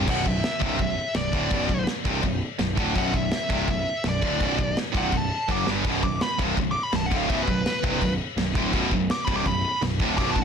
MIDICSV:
0, 0, Header, 1, 5, 480
1, 0, Start_track
1, 0, Tempo, 361228
1, 98, Time_signature, 4, 2, 24, 8
1, 13875, End_track
2, 0, Start_track
2, 0, Title_t, "Lead electric guitar"
2, 0, Program_c, 0, 29
2, 133, Note_on_c, 0, 78, 99
2, 365, Note_off_c, 0, 78, 0
2, 365, Note_on_c, 0, 76, 84
2, 1050, Note_off_c, 0, 76, 0
2, 1081, Note_on_c, 0, 76, 96
2, 1535, Note_off_c, 0, 76, 0
2, 1544, Note_on_c, 0, 74, 100
2, 2471, Note_off_c, 0, 74, 0
2, 3958, Note_on_c, 0, 78, 97
2, 4180, Note_off_c, 0, 78, 0
2, 4196, Note_on_c, 0, 76, 90
2, 4885, Note_off_c, 0, 76, 0
2, 4925, Note_on_c, 0, 76, 98
2, 5376, Note_off_c, 0, 76, 0
2, 5429, Note_on_c, 0, 74, 105
2, 6335, Note_off_c, 0, 74, 0
2, 6606, Note_on_c, 0, 78, 103
2, 6870, Note_off_c, 0, 78, 0
2, 6870, Note_on_c, 0, 81, 108
2, 7310, Note_off_c, 0, 81, 0
2, 7324, Note_on_c, 0, 86, 83
2, 7544, Note_off_c, 0, 86, 0
2, 8019, Note_on_c, 0, 86, 89
2, 8251, Note_off_c, 0, 86, 0
2, 8270, Note_on_c, 0, 83, 106
2, 8497, Note_off_c, 0, 83, 0
2, 8917, Note_on_c, 0, 86, 99
2, 9078, Note_off_c, 0, 86, 0
2, 9078, Note_on_c, 0, 83, 96
2, 9223, Note_off_c, 0, 83, 0
2, 9243, Note_on_c, 0, 81, 98
2, 9381, Note_off_c, 0, 81, 0
2, 9381, Note_on_c, 0, 78, 100
2, 9518, Note_off_c, 0, 78, 0
2, 9518, Note_on_c, 0, 77, 102
2, 9698, Note_off_c, 0, 77, 0
2, 9698, Note_on_c, 0, 76, 102
2, 9853, Note_off_c, 0, 76, 0
2, 9871, Note_on_c, 0, 71, 108
2, 10797, Note_off_c, 0, 71, 0
2, 12104, Note_on_c, 0, 86, 97
2, 12285, Note_off_c, 0, 86, 0
2, 12285, Note_on_c, 0, 83, 106
2, 12434, Note_off_c, 0, 83, 0
2, 12434, Note_on_c, 0, 86, 94
2, 12580, Note_off_c, 0, 86, 0
2, 12585, Note_on_c, 0, 83, 119
2, 13048, Note_off_c, 0, 83, 0
2, 13525, Note_on_c, 0, 86, 113
2, 13687, Note_off_c, 0, 86, 0
2, 13695, Note_on_c, 0, 81, 100
2, 13844, Note_off_c, 0, 81, 0
2, 13875, End_track
3, 0, Start_track
3, 0, Title_t, "Distorted electric guitar"
3, 0, Program_c, 1, 30
3, 76, Note_on_c, 1, 35, 93
3, 88, Note_on_c, 1, 42, 95
3, 90, Note_on_c, 1, 47, 103
3, 307, Note_off_c, 1, 42, 0
3, 319, Note_off_c, 1, 35, 0
3, 323, Note_on_c, 1, 42, 73
3, 327, Note_off_c, 1, 47, 0
3, 333, Note_on_c, 1, 35, 61
3, 522, Note_off_c, 1, 42, 0
3, 527, Note_off_c, 1, 35, 0
3, 790, Note_on_c, 1, 36, 86
3, 806, Note_on_c, 1, 43, 99
3, 807, Note_on_c, 1, 48, 107
3, 1023, Note_off_c, 1, 36, 0
3, 1028, Note_on_c, 1, 35, 68
3, 1031, Note_off_c, 1, 43, 0
3, 1036, Note_on_c, 1, 42, 69
3, 1045, Note_off_c, 1, 48, 0
3, 1234, Note_off_c, 1, 35, 0
3, 1239, Note_off_c, 1, 42, 0
3, 1527, Note_on_c, 1, 35, 67
3, 1533, Note_on_c, 1, 42, 69
3, 1724, Note_off_c, 1, 35, 0
3, 1727, Note_off_c, 1, 42, 0
3, 1783, Note_on_c, 1, 38, 98
3, 1787, Note_on_c, 1, 45, 89
3, 1791, Note_on_c, 1, 50, 93
3, 2012, Note_off_c, 1, 38, 0
3, 2015, Note_off_c, 1, 45, 0
3, 2017, Note_off_c, 1, 50, 0
3, 2033, Note_on_c, 1, 35, 99
3, 2033, Note_on_c, 1, 42, 94
3, 2042, Note_on_c, 1, 47, 103
3, 2246, Note_off_c, 1, 35, 0
3, 2253, Note_off_c, 1, 42, 0
3, 2262, Note_off_c, 1, 47, 0
3, 2262, Note_on_c, 1, 35, 66
3, 2269, Note_on_c, 1, 42, 72
3, 2451, Note_off_c, 1, 35, 0
3, 2455, Note_off_c, 1, 42, 0
3, 2744, Note_on_c, 1, 43, 101
3, 2747, Note_on_c, 1, 36, 96
3, 2755, Note_on_c, 1, 48, 101
3, 2960, Note_off_c, 1, 36, 0
3, 2965, Note_off_c, 1, 43, 0
3, 2965, Note_on_c, 1, 35, 63
3, 2970, Note_on_c, 1, 42, 72
3, 2978, Note_off_c, 1, 48, 0
3, 3163, Note_off_c, 1, 35, 0
3, 3165, Note_off_c, 1, 42, 0
3, 3456, Note_on_c, 1, 35, 70
3, 3463, Note_on_c, 1, 42, 80
3, 3648, Note_off_c, 1, 35, 0
3, 3652, Note_off_c, 1, 42, 0
3, 3701, Note_on_c, 1, 38, 91
3, 3706, Note_on_c, 1, 45, 100
3, 3713, Note_on_c, 1, 50, 97
3, 3928, Note_off_c, 1, 38, 0
3, 3933, Note_on_c, 1, 35, 89
3, 3934, Note_off_c, 1, 45, 0
3, 3937, Note_off_c, 1, 50, 0
3, 3940, Note_on_c, 1, 42, 111
3, 3944, Note_on_c, 1, 47, 112
3, 4160, Note_off_c, 1, 35, 0
3, 4160, Note_off_c, 1, 42, 0
3, 4173, Note_off_c, 1, 47, 0
3, 4176, Note_on_c, 1, 35, 69
3, 4176, Note_on_c, 1, 42, 80
3, 4368, Note_off_c, 1, 35, 0
3, 4368, Note_off_c, 1, 42, 0
3, 4660, Note_on_c, 1, 36, 93
3, 4666, Note_on_c, 1, 43, 110
3, 4670, Note_on_c, 1, 48, 103
3, 4891, Note_off_c, 1, 36, 0
3, 4894, Note_off_c, 1, 43, 0
3, 4896, Note_off_c, 1, 48, 0
3, 4909, Note_on_c, 1, 35, 72
3, 4911, Note_on_c, 1, 42, 80
3, 5095, Note_off_c, 1, 35, 0
3, 5096, Note_off_c, 1, 42, 0
3, 5389, Note_on_c, 1, 35, 65
3, 5393, Note_on_c, 1, 42, 65
3, 5574, Note_off_c, 1, 35, 0
3, 5577, Note_off_c, 1, 42, 0
3, 5619, Note_on_c, 1, 38, 96
3, 5620, Note_on_c, 1, 45, 101
3, 5627, Note_on_c, 1, 50, 100
3, 5850, Note_off_c, 1, 38, 0
3, 5851, Note_off_c, 1, 45, 0
3, 5854, Note_off_c, 1, 50, 0
3, 5865, Note_on_c, 1, 35, 103
3, 5867, Note_on_c, 1, 42, 89
3, 5879, Note_on_c, 1, 47, 102
3, 6078, Note_off_c, 1, 35, 0
3, 6085, Note_off_c, 1, 42, 0
3, 6093, Note_on_c, 1, 35, 64
3, 6100, Note_off_c, 1, 47, 0
3, 6101, Note_on_c, 1, 42, 74
3, 6287, Note_off_c, 1, 35, 0
3, 6290, Note_off_c, 1, 42, 0
3, 6572, Note_on_c, 1, 36, 93
3, 6577, Note_on_c, 1, 48, 105
3, 6584, Note_on_c, 1, 43, 99
3, 6793, Note_off_c, 1, 36, 0
3, 6799, Note_on_c, 1, 35, 63
3, 6810, Note_off_c, 1, 48, 0
3, 6811, Note_off_c, 1, 43, 0
3, 6816, Note_on_c, 1, 42, 81
3, 7000, Note_off_c, 1, 35, 0
3, 7008, Note_off_c, 1, 42, 0
3, 7305, Note_on_c, 1, 42, 91
3, 7310, Note_on_c, 1, 49, 100
3, 7320, Note_on_c, 1, 54, 109
3, 7529, Note_off_c, 1, 42, 0
3, 7532, Note_off_c, 1, 49, 0
3, 7534, Note_on_c, 1, 43, 83
3, 7536, Note_off_c, 1, 54, 0
3, 7537, Note_on_c, 1, 50, 103
3, 7542, Note_on_c, 1, 55, 101
3, 7760, Note_off_c, 1, 43, 0
3, 7765, Note_on_c, 1, 35, 101
3, 7770, Note_off_c, 1, 50, 0
3, 7772, Note_off_c, 1, 55, 0
3, 7784, Note_on_c, 1, 42, 91
3, 7784, Note_on_c, 1, 47, 98
3, 8004, Note_off_c, 1, 35, 0
3, 8013, Note_off_c, 1, 42, 0
3, 8013, Note_off_c, 1, 47, 0
3, 8024, Note_on_c, 1, 35, 65
3, 8036, Note_on_c, 1, 42, 73
3, 8213, Note_off_c, 1, 35, 0
3, 8219, Note_off_c, 1, 42, 0
3, 8503, Note_on_c, 1, 36, 97
3, 8513, Note_on_c, 1, 43, 108
3, 8515, Note_on_c, 1, 48, 104
3, 8733, Note_off_c, 1, 36, 0
3, 8738, Note_off_c, 1, 43, 0
3, 8739, Note_off_c, 1, 48, 0
3, 8744, Note_on_c, 1, 35, 63
3, 8747, Note_on_c, 1, 42, 74
3, 8933, Note_off_c, 1, 35, 0
3, 8935, Note_off_c, 1, 42, 0
3, 9209, Note_on_c, 1, 35, 61
3, 9216, Note_on_c, 1, 42, 76
3, 9405, Note_off_c, 1, 35, 0
3, 9409, Note_off_c, 1, 42, 0
3, 9458, Note_on_c, 1, 38, 88
3, 9474, Note_on_c, 1, 45, 99
3, 9478, Note_on_c, 1, 50, 106
3, 9691, Note_off_c, 1, 38, 0
3, 9699, Note_off_c, 1, 45, 0
3, 9701, Note_off_c, 1, 50, 0
3, 9715, Note_on_c, 1, 35, 99
3, 9715, Note_on_c, 1, 42, 99
3, 9720, Note_on_c, 1, 47, 105
3, 9927, Note_off_c, 1, 35, 0
3, 9934, Note_off_c, 1, 42, 0
3, 9942, Note_off_c, 1, 47, 0
3, 9943, Note_on_c, 1, 35, 62
3, 9950, Note_on_c, 1, 42, 79
3, 10133, Note_off_c, 1, 35, 0
3, 10136, Note_off_c, 1, 42, 0
3, 10411, Note_on_c, 1, 36, 109
3, 10416, Note_on_c, 1, 48, 103
3, 10419, Note_on_c, 1, 43, 108
3, 10644, Note_off_c, 1, 36, 0
3, 10649, Note_on_c, 1, 35, 69
3, 10650, Note_off_c, 1, 48, 0
3, 10652, Note_off_c, 1, 43, 0
3, 10662, Note_on_c, 1, 42, 72
3, 10846, Note_off_c, 1, 35, 0
3, 10853, Note_off_c, 1, 42, 0
3, 11136, Note_on_c, 1, 42, 76
3, 11140, Note_on_c, 1, 35, 67
3, 11330, Note_off_c, 1, 42, 0
3, 11331, Note_off_c, 1, 35, 0
3, 11380, Note_on_c, 1, 38, 93
3, 11380, Note_on_c, 1, 45, 99
3, 11381, Note_on_c, 1, 50, 111
3, 11596, Note_off_c, 1, 38, 0
3, 11601, Note_on_c, 1, 35, 101
3, 11605, Note_off_c, 1, 45, 0
3, 11609, Note_off_c, 1, 50, 0
3, 11611, Note_on_c, 1, 42, 105
3, 11615, Note_on_c, 1, 47, 110
3, 11843, Note_off_c, 1, 35, 0
3, 11848, Note_off_c, 1, 42, 0
3, 11850, Note_off_c, 1, 47, 0
3, 11861, Note_on_c, 1, 35, 64
3, 11862, Note_on_c, 1, 42, 75
3, 12052, Note_off_c, 1, 35, 0
3, 12053, Note_off_c, 1, 42, 0
3, 12321, Note_on_c, 1, 36, 102
3, 12338, Note_on_c, 1, 48, 116
3, 12343, Note_on_c, 1, 43, 109
3, 12564, Note_off_c, 1, 36, 0
3, 12572, Note_off_c, 1, 48, 0
3, 12574, Note_off_c, 1, 43, 0
3, 12599, Note_on_c, 1, 35, 72
3, 12602, Note_on_c, 1, 42, 76
3, 12781, Note_off_c, 1, 35, 0
3, 12783, Note_off_c, 1, 42, 0
3, 13059, Note_on_c, 1, 35, 66
3, 13076, Note_on_c, 1, 42, 75
3, 13252, Note_off_c, 1, 35, 0
3, 13260, Note_off_c, 1, 42, 0
3, 13310, Note_on_c, 1, 38, 85
3, 13315, Note_on_c, 1, 45, 90
3, 13327, Note_on_c, 1, 50, 114
3, 13538, Note_off_c, 1, 38, 0
3, 13540, Note_off_c, 1, 45, 0
3, 13547, Note_off_c, 1, 50, 0
3, 13552, Note_on_c, 1, 35, 99
3, 13554, Note_on_c, 1, 47, 114
3, 13556, Note_on_c, 1, 42, 110
3, 13771, Note_off_c, 1, 35, 0
3, 13773, Note_off_c, 1, 42, 0
3, 13780, Note_off_c, 1, 47, 0
3, 13787, Note_on_c, 1, 35, 74
3, 13789, Note_on_c, 1, 42, 70
3, 13875, Note_off_c, 1, 35, 0
3, 13875, Note_off_c, 1, 42, 0
3, 13875, End_track
4, 0, Start_track
4, 0, Title_t, "Picked electric bass"
4, 0, Program_c, 2, 34
4, 101, Note_on_c, 2, 23, 91
4, 322, Note_off_c, 2, 23, 0
4, 337, Note_on_c, 2, 23, 76
4, 561, Note_off_c, 2, 23, 0
4, 815, Note_on_c, 2, 24, 98
4, 1039, Note_off_c, 2, 24, 0
4, 1052, Note_on_c, 2, 23, 75
4, 1278, Note_off_c, 2, 23, 0
4, 1524, Note_on_c, 2, 23, 76
4, 1753, Note_off_c, 2, 23, 0
4, 1773, Note_on_c, 2, 26, 93
4, 1998, Note_off_c, 2, 26, 0
4, 2005, Note_on_c, 2, 23, 95
4, 2233, Note_off_c, 2, 23, 0
4, 2245, Note_on_c, 2, 23, 79
4, 2473, Note_off_c, 2, 23, 0
4, 2725, Note_on_c, 2, 24, 93
4, 2954, Note_off_c, 2, 24, 0
4, 2965, Note_on_c, 2, 23, 80
4, 3193, Note_off_c, 2, 23, 0
4, 3463, Note_on_c, 2, 23, 80
4, 3673, Note_off_c, 2, 23, 0
4, 3681, Note_on_c, 2, 26, 95
4, 3911, Note_off_c, 2, 26, 0
4, 3931, Note_on_c, 2, 23, 93
4, 4157, Note_off_c, 2, 23, 0
4, 4168, Note_on_c, 2, 23, 81
4, 4395, Note_off_c, 2, 23, 0
4, 4655, Note_on_c, 2, 24, 99
4, 4874, Note_off_c, 2, 24, 0
4, 4882, Note_on_c, 2, 23, 80
4, 5112, Note_off_c, 2, 23, 0
4, 5370, Note_on_c, 2, 23, 82
4, 5596, Note_off_c, 2, 23, 0
4, 5611, Note_on_c, 2, 26, 97
4, 5837, Note_off_c, 2, 26, 0
4, 5854, Note_on_c, 2, 23, 96
4, 6078, Note_off_c, 2, 23, 0
4, 6089, Note_on_c, 2, 23, 85
4, 6316, Note_off_c, 2, 23, 0
4, 6567, Note_on_c, 2, 24, 98
4, 6795, Note_off_c, 2, 24, 0
4, 6811, Note_on_c, 2, 23, 82
4, 7037, Note_off_c, 2, 23, 0
4, 7296, Note_on_c, 2, 30, 93
4, 7520, Note_off_c, 2, 30, 0
4, 7531, Note_on_c, 2, 31, 89
4, 7757, Note_off_c, 2, 31, 0
4, 7768, Note_on_c, 2, 23, 98
4, 7996, Note_off_c, 2, 23, 0
4, 8010, Note_on_c, 2, 23, 81
4, 8236, Note_off_c, 2, 23, 0
4, 8499, Note_on_c, 2, 24, 97
4, 8715, Note_off_c, 2, 24, 0
4, 8723, Note_on_c, 2, 23, 84
4, 8953, Note_off_c, 2, 23, 0
4, 9210, Note_on_c, 2, 23, 88
4, 9437, Note_off_c, 2, 23, 0
4, 9455, Note_on_c, 2, 26, 96
4, 9680, Note_off_c, 2, 26, 0
4, 9687, Note_on_c, 2, 23, 95
4, 9916, Note_off_c, 2, 23, 0
4, 9937, Note_on_c, 2, 23, 83
4, 10161, Note_off_c, 2, 23, 0
4, 10416, Note_on_c, 2, 24, 101
4, 10641, Note_off_c, 2, 24, 0
4, 10656, Note_on_c, 2, 23, 81
4, 10881, Note_off_c, 2, 23, 0
4, 11114, Note_on_c, 2, 23, 84
4, 11349, Note_off_c, 2, 23, 0
4, 11360, Note_on_c, 2, 26, 96
4, 11592, Note_off_c, 2, 26, 0
4, 11610, Note_on_c, 2, 23, 98
4, 11838, Note_off_c, 2, 23, 0
4, 11851, Note_on_c, 2, 23, 82
4, 12078, Note_off_c, 2, 23, 0
4, 12326, Note_on_c, 2, 24, 100
4, 12556, Note_off_c, 2, 24, 0
4, 12572, Note_on_c, 2, 23, 80
4, 12799, Note_off_c, 2, 23, 0
4, 13046, Note_on_c, 2, 23, 82
4, 13276, Note_off_c, 2, 23, 0
4, 13283, Note_on_c, 2, 26, 103
4, 13514, Note_off_c, 2, 26, 0
4, 13526, Note_on_c, 2, 23, 97
4, 13756, Note_off_c, 2, 23, 0
4, 13765, Note_on_c, 2, 23, 79
4, 13875, Note_off_c, 2, 23, 0
4, 13875, End_track
5, 0, Start_track
5, 0, Title_t, "Drums"
5, 103, Note_on_c, 9, 36, 106
5, 111, Note_on_c, 9, 49, 114
5, 111, Note_on_c, 9, 57, 61
5, 236, Note_off_c, 9, 36, 0
5, 244, Note_off_c, 9, 49, 0
5, 244, Note_off_c, 9, 57, 0
5, 344, Note_on_c, 9, 36, 97
5, 477, Note_off_c, 9, 36, 0
5, 580, Note_on_c, 9, 57, 61
5, 584, Note_on_c, 9, 38, 105
5, 713, Note_off_c, 9, 57, 0
5, 717, Note_off_c, 9, 38, 0
5, 819, Note_on_c, 9, 36, 102
5, 951, Note_off_c, 9, 36, 0
5, 1050, Note_on_c, 9, 57, 64
5, 1053, Note_on_c, 9, 36, 91
5, 1183, Note_off_c, 9, 57, 0
5, 1186, Note_off_c, 9, 36, 0
5, 1521, Note_on_c, 9, 57, 65
5, 1525, Note_on_c, 9, 38, 111
5, 1654, Note_off_c, 9, 57, 0
5, 1658, Note_off_c, 9, 38, 0
5, 1769, Note_on_c, 9, 36, 104
5, 1902, Note_off_c, 9, 36, 0
5, 1999, Note_on_c, 9, 57, 68
5, 2009, Note_on_c, 9, 36, 111
5, 2132, Note_off_c, 9, 57, 0
5, 2142, Note_off_c, 9, 36, 0
5, 2247, Note_on_c, 9, 36, 98
5, 2380, Note_off_c, 9, 36, 0
5, 2485, Note_on_c, 9, 57, 67
5, 2489, Note_on_c, 9, 38, 107
5, 2618, Note_off_c, 9, 57, 0
5, 2622, Note_off_c, 9, 38, 0
5, 2727, Note_on_c, 9, 36, 106
5, 2860, Note_off_c, 9, 36, 0
5, 2960, Note_on_c, 9, 57, 63
5, 2967, Note_on_c, 9, 36, 94
5, 3093, Note_off_c, 9, 57, 0
5, 3100, Note_off_c, 9, 36, 0
5, 3440, Note_on_c, 9, 57, 63
5, 3444, Note_on_c, 9, 38, 114
5, 3573, Note_off_c, 9, 57, 0
5, 3577, Note_off_c, 9, 38, 0
5, 3687, Note_on_c, 9, 36, 109
5, 3820, Note_off_c, 9, 36, 0
5, 3928, Note_on_c, 9, 36, 108
5, 3932, Note_on_c, 9, 57, 61
5, 4061, Note_off_c, 9, 36, 0
5, 4065, Note_off_c, 9, 57, 0
5, 4170, Note_on_c, 9, 36, 95
5, 4303, Note_off_c, 9, 36, 0
5, 4403, Note_on_c, 9, 57, 57
5, 4407, Note_on_c, 9, 38, 114
5, 4536, Note_off_c, 9, 57, 0
5, 4540, Note_off_c, 9, 38, 0
5, 4650, Note_on_c, 9, 36, 101
5, 4782, Note_off_c, 9, 36, 0
5, 4886, Note_on_c, 9, 57, 61
5, 4889, Note_on_c, 9, 36, 93
5, 5019, Note_off_c, 9, 57, 0
5, 5022, Note_off_c, 9, 36, 0
5, 5365, Note_on_c, 9, 57, 62
5, 5369, Note_on_c, 9, 38, 116
5, 5498, Note_off_c, 9, 57, 0
5, 5502, Note_off_c, 9, 38, 0
5, 5613, Note_on_c, 9, 36, 107
5, 5745, Note_off_c, 9, 36, 0
5, 5853, Note_on_c, 9, 36, 108
5, 5854, Note_on_c, 9, 57, 68
5, 5986, Note_off_c, 9, 36, 0
5, 5987, Note_off_c, 9, 57, 0
5, 6093, Note_on_c, 9, 36, 99
5, 6226, Note_off_c, 9, 36, 0
5, 6335, Note_on_c, 9, 57, 63
5, 6339, Note_on_c, 9, 38, 106
5, 6468, Note_off_c, 9, 57, 0
5, 6472, Note_off_c, 9, 38, 0
5, 6571, Note_on_c, 9, 36, 109
5, 6704, Note_off_c, 9, 36, 0
5, 6803, Note_on_c, 9, 57, 66
5, 6809, Note_on_c, 9, 36, 88
5, 6936, Note_off_c, 9, 57, 0
5, 6942, Note_off_c, 9, 36, 0
5, 7291, Note_on_c, 9, 36, 69
5, 7424, Note_off_c, 9, 36, 0
5, 7533, Note_on_c, 9, 38, 91
5, 7666, Note_off_c, 9, 38, 0
5, 7769, Note_on_c, 9, 36, 102
5, 7774, Note_on_c, 9, 57, 63
5, 7902, Note_off_c, 9, 36, 0
5, 7907, Note_off_c, 9, 57, 0
5, 8011, Note_on_c, 9, 36, 96
5, 8144, Note_off_c, 9, 36, 0
5, 8251, Note_on_c, 9, 57, 59
5, 8255, Note_on_c, 9, 38, 114
5, 8384, Note_off_c, 9, 57, 0
5, 8388, Note_off_c, 9, 38, 0
5, 8494, Note_on_c, 9, 36, 108
5, 8627, Note_off_c, 9, 36, 0
5, 8734, Note_on_c, 9, 36, 95
5, 8739, Note_on_c, 9, 57, 61
5, 8866, Note_off_c, 9, 36, 0
5, 8872, Note_off_c, 9, 57, 0
5, 9203, Note_on_c, 9, 57, 65
5, 9207, Note_on_c, 9, 38, 118
5, 9335, Note_off_c, 9, 57, 0
5, 9339, Note_off_c, 9, 38, 0
5, 9455, Note_on_c, 9, 36, 109
5, 9587, Note_off_c, 9, 36, 0
5, 9697, Note_on_c, 9, 36, 113
5, 9697, Note_on_c, 9, 57, 67
5, 9830, Note_off_c, 9, 36, 0
5, 9830, Note_off_c, 9, 57, 0
5, 9934, Note_on_c, 9, 36, 99
5, 10067, Note_off_c, 9, 36, 0
5, 10176, Note_on_c, 9, 57, 65
5, 10180, Note_on_c, 9, 38, 115
5, 10308, Note_off_c, 9, 57, 0
5, 10312, Note_off_c, 9, 38, 0
5, 10416, Note_on_c, 9, 36, 115
5, 10549, Note_off_c, 9, 36, 0
5, 10653, Note_on_c, 9, 36, 88
5, 10658, Note_on_c, 9, 57, 71
5, 10786, Note_off_c, 9, 36, 0
5, 10791, Note_off_c, 9, 57, 0
5, 11130, Note_on_c, 9, 57, 70
5, 11133, Note_on_c, 9, 38, 118
5, 11262, Note_off_c, 9, 57, 0
5, 11266, Note_off_c, 9, 38, 0
5, 11366, Note_on_c, 9, 36, 108
5, 11499, Note_off_c, 9, 36, 0
5, 11605, Note_on_c, 9, 36, 112
5, 11605, Note_on_c, 9, 57, 65
5, 11738, Note_off_c, 9, 36, 0
5, 11738, Note_off_c, 9, 57, 0
5, 11846, Note_on_c, 9, 36, 98
5, 11978, Note_off_c, 9, 36, 0
5, 12088, Note_on_c, 9, 57, 62
5, 12092, Note_on_c, 9, 38, 117
5, 12221, Note_off_c, 9, 57, 0
5, 12225, Note_off_c, 9, 38, 0
5, 12326, Note_on_c, 9, 36, 108
5, 12459, Note_off_c, 9, 36, 0
5, 12567, Note_on_c, 9, 36, 95
5, 12572, Note_on_c, 9, 57, 62
5, 12700, Note_off_c, 9, 36, 0
5, 12705, Note_off_c, 9, 57, 0
5, 13053, Note_on_c, 9, 57, 65
5, 13057, Note_on_c, 9, 38, 117
5, 13186, Note_off_c, 9, 57, 0
5, 13190, Note_off_c, 9, 38, 0
5, 13288, Note_on_c, 9, 36, 108
5, 13421, Note_off_c, 9, 36, 0
5, 13526, Note_on_c, 9, 36, 108
5, 13532, Note_on_c, 9, 57, 65
5, 13659, Note_off_c, 9, 36, 0
5, 13665, Note_off_c, 9, 57, 0
5, 13764, Note_on_c, 9, 36, 101
5, 13875, Note_off_c, 9, 36, 0
5, 13875, End_track
0, 0, End_of_file